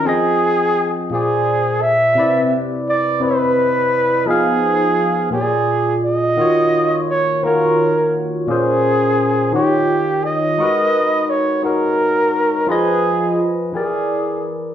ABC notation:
X:1
M:6/8
L:1/8
Q:3/8=57
K:Ebm
V:1 name="Flugelhorn"
A3 A2 _f- | _f z =d =B3 | A3 A2 e- | e2 d B2 z |
A3 =G2 e- | e2 d B3 | A2 z ^G2 z |]
V:2 name="Tine electric piano"
[F,=CAe=g]3 [B,,B,A=c=d]3 | [=C,=C=E=B=d]3 [C,CEB_e=e]3 | [F,CEAf]3 [B,,B,FAd=d]3 | [E,B,FGd]3 [E,B,FGd]3 |
[B,,B,DA=c]3 [E,EF=Gd]3 | [A,EGBc]3 [A,EGBd]3 | [F,FAce]3 [=E,=E^G^A=d]3 |]